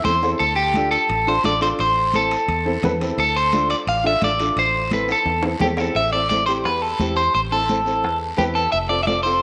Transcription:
0.05 E2 C4 E4 A4 C5, high conga, low conga, short guiro
0.22 C4 E4 A4, low timbale, short guiro
0.39 D2 A4, high conga, high timbale, long guiro
0.56 G4
0.74 D4 F4 A4, high conga, high timbale, short guiro
0.91 A4, high timbale, short guiro
1.09 A1, high conga, high timbale, long guiro
1.27 D4 F4 A4 C5
1.44 A1 D4 F4 A4 D5, high conga, high timbale, short guiro
1.61 D4 F4 A4 C5, high timbale, short guiro
1.79 A1 C5, high conga, high timbale, long guiro
2.13 C4 E4 A4, high conga, high timbale, short guiro
2.31 high timbale, short guiro
2.48 E2, high conga, high timbale, long guiro
2.65 C4 E4 A4
2.82 E2 C4 E4 B4, high conga, low conga, high timbale, low timbale, short guiro
3.00 C4 E4 A4, high timbale, short guiro
3.17 D2 A4, high conga, high timbale, long guiro
3.36 C5
3.52 D4 F4 A4, high conga, high timbale, short guiro
3.70 D5, high timbale, short guiro
3.87 A1 F5, high conga, high timbale, long guiro
4.04 D4 F4 A4 E5
4.22 A1 D4 F4 A4 D5, high conga, high timbale, short guiro
4.39 D4 F4 A4, high timbale, short guiro
4.56 A1 C5, high conga, high timbale, long guiro
4.91 C4 E4 A4 B4, high conga, high timbale, short guiro
5.08 A4, high timbale, short guiro
5.25 E2, high conga, high timbale, long guiro
5.43 C4 E4 A4, high timbale
5.60 E2 C4 E4 G4 A4, high conga, low conga, low timbale, short guiro
5.77 C4 E4 A4, low timbale, short guiro
5.95 A1 E5, high conga, long guiro
6.13 C4 E4 A4 D5
6.29 C4 E4 A4 D5, high conga, short guiro
6.46 C4 E4 G4 C5, short guiro
6.65 E2 B4, high conga, long guiro
6.82 A4
6.99 E2 C4 E4 G4, high conga, short guiro
7.17 C5, short guiro
7.34 A1 C5, high conga, long guiro
7.52 C4 E4 A4
7.69 C4 E4 A4, high conga, short guiro
7.85 C4 E4 A4, short guiro
8.03 E2, high conga, long guiro
8.37 E2 C4 E4 G4 B4, high conga, short guiro
8.55 A4, short guiro
8.72 F1 E5, high conga, long guiro
8.89 C4 F4 A4 D5
9.03 C4 F4 E5, high conga
9.07 A4 D5, short guiro
9.23 C4 F4 A4 C5, short guiro

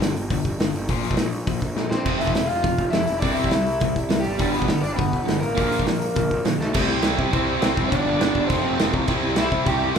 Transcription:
0.01 G1 G2 D3, snare, open hi-hat
0.16 G1, open hi-hat
0.30 G1 G2 D3, kick, open hi-hat
0.45 G1, kick, open hi-hat
0.59 G1 G2 D3, snare, open hi-hat
0.74 G1, open hi-hat
0.89 A#1 A#2 F3 A#3, kick, open hi-hat
1.02 A#1, open hi-hat
1.11 kick
1.17 A#1 A#2 F3, snare, open hi-hat
1.32 open hi-hat
1.47 A#1 A#2 F3, kick, open hi-hat
1.62 A#1, kick, open hi-hat
1.75 A#1 A#2 F3, snare
1.90 A#1 C4 C5, snare
2.05 F1 F2 C3 F3, kick, crash
2.18 F1 E4 E5, open hi-hat
2.27 kick
2.34 F1 F2 C3, snare, open hi-hat
2.47 F1 F4 F5, open hi-hat
2.63 F1 F2 C3, kick, open hi-hat
2.78 F1, kick, open hi-hat
2.90 F1 F2 C3 E4 E5, snare, open hi-hat
3.07 F1, open hi-hat
3.19 C2 C3 G3 D4 D5, kick, open hi-hat
3.23 C4
3.33 E4 E5
3.37 C2, open hi-hat
3.44 kick
3.51 C2 C3 G3, snare, open hi-hat
3.66 open hi-hat
3.80 C2 C3 G3, kick, open hi-hat
3.95 C2, kick, open hi-hat
4.09 C2 C3 G3, snare, open hi-hat
4.20 G4
4.24 G1 G3, open hi-hat
4.38 G1 G2 D3 G3, kick, open hi-hat
4.51 G1 B3 B4, open hi-hat
4.62 kick
4.68 G1 G2 D3, snare, open hi-hat
4.82 G1 D4 D5, open hi-hat
4.93 G2 B3 B4
4.97 G1 D3, kick, open hi-hat
5.13 G1, kick, open hi-hat
5.25 G1 G2 D3, snare, open hi-hat
5.40 A1 A#3 A#4, open hi-hat
5.55 A#1 A#2 D3 F3 A#3, kick, open hi-hat
5.70 A#1, open hi-hat
5.79 kick
5.85 A#1 A#2 D3 F3, snare, open hi-hat
6.02 open hi-hat
6.15 A#1 A#2 D3 F3, kick, open hi-hat
6.31 A#1, kick, open hi-hat
6.44 A#1 A#2 D3 F3, snare, open hi-hat
6.58 B1 A3 A4, snare
6.73 C2 C3 G3 C4 E4, kick, crash
6.87 C2
7.02 C2 C3 G3 C4 E4, snare, crash
7.19 C3, kick
7.31 C2 C3 G3 C4 E4 C5, kick, crash
7.61 C2 C3 G3 C4 E4, snare, crash
7.77 F1, kick
7.87 G2 D3 G3 B3 D4 D5
7.92 G1 D4, kick, crash
8.05 G1
8.18 G1 G2 D3 G3 B3 D4, snare, crash
8.35 G1, kick
8.46 F1 F2 C3 F3 A3 C4 C5, kick, crash
8.64 F1
8.77 F1 F2 C3 F3 A3 C4, snare, crash
8.93 C2, kick
9.07 C2 C3 G3 C4 E4, kick, crash
9.23 C2
9.36 C2 C3 G3 C4 E4, snare, crash
9.41 E5
9.52 C3, kick
9.65 C2 C3 G3 C4 E4 G4 G5, kick, crash
9.94 C2 G3 C4 E4

